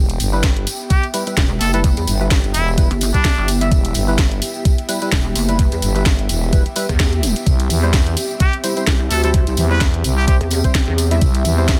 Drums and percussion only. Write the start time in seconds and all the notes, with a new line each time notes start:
0.09 closed hi-hat, tambourine
0.20 open hi-hat, tambourine
0.33 tambourine
0.43 kick, snare, closed hi-hat, tambourine
0.57 closed hi-hat
0.67 open hi-hat, tambourine
0.79 tambourine
0.90 kick, closed hi-hat, tambourine
1.03 closed hi-hat
1.14 open hi-hat, tambourine
1.27 closed hi-hat, tambourine
1.37 kick, snare, closed hi-hat, tambourine
1.61 open hi-hat, tambourine
1.73 closed hi-hat, tambourine
1.84 kick, closed hi-hat, tambourine
1.97 closed hi-hat, tambourine
2.07 open hi-hat, tambourine
2.21 tambourine
2.31 kick, snare, closed hi-hat, tambourine
2.44 closed hi-hat
2.54 open hi-hat, tambourine
2.68 tambourine
2.78 kick, closed hi-hat, tambourine
2.91 closed hi-hat
3.01 open hi-hat, tambourine
3.14 kick, closed hi-hat, tambourine
3.25 kick, snare, closed hi-hat, tambourine
3.48 open hi-hat, tambourine
3.61 closed hi-hat, tambourine
3.71 kick, closed hi-hat, tambourine
3.85 closed hi-hat, tambourine
3.94 open hi-hat, tambourine
4.08 tambourine
4.18 kick, snare, closed hi-hat, tambourine
4.32 closed hi-hat
4.42 open hi-hat, tambourine
4.54 tambourine
4.65 kick, closed hi-hat, tambourine
4.78 closed hi-hat
4.89 open hi-hat, tambourine
5.02 closed hi-hat, tambourine
5.12 kick, snare, closed hi-hat, tambourine
5.35 open hi-hat, tambourine
5.49 closed hi-hat
5.59 kick, closed hi-hat, tambourine
5.72 closed hi-hat, tambourine
5.82 open hi-hat, tambourine
5.96 closed hi-hat, tambourine
6.06 kick, snare, closed hi-hat, tambourine
6.19 closed hi-hat
6.29 open hi-hat, tambourine
6.43 tambourine
6.53 kick, closed hi-hat, tambourine
6.66 closed hi-hat
6.76 open hi-hat, tambourine
6.89 kick, closed hi-hat, tambourine
7.00 kick, snare, closed hi-hat, tambourine
7.13 closed hi-hat
7.23 open hi-hat, tambourine
7.36 closed hi-hat, tambourine
7.46 kick, closed hi-hat, tambourine
7.60 closed hi-hat, tambourine
7.70 open hi-hat, tambourine
7.83 tambourine
7.93 kick, snare, closed hi-hat, tambourine
8.07 closed hi-hat
8.17 open hi-hat, tambourine
8.31 tambourine
8.40 kick, closed hi-hat, tambourine
8.53 closed hi-hat
8.64 open hi-hat, tambourine
8.77 closed hi-hat, tambourine
8.87 kick, snare, closed hi-hat, tambourine
9.11 open hi-hat, tambourine
9.24 closed hi-hat, tambourine
9.34 kick, closed hi-hat, tambourine
9.47 closed hi-hat, tambourine
9.57 open hi-hat, tambourine
9.70 tambourine
9.81 kick, snare, closed hi-hat, tambourine
9.94 closed hi-hat
10.04 open hi-hat, tambourine
10.18 tambourine
10.28 kick, closed hi-hat, tambourine
10.41 closed hi-hat
10.50 open hi-hat, tambourine
10.64 kick, closed hi-hat, tambourine
10.75 kick, snare, closed hi-hat, tambourine
10.98 open hi-hat, tambourine
11.11 closed hi-hat, tambourine
11.21 kick, closed hi-hat, tambourine
11.35 closed hi-hat, tambourine
11.45 open hi-hat, tambourine
11.58 tambourine
11.68 kick, snare, closed hi-hat, tambourine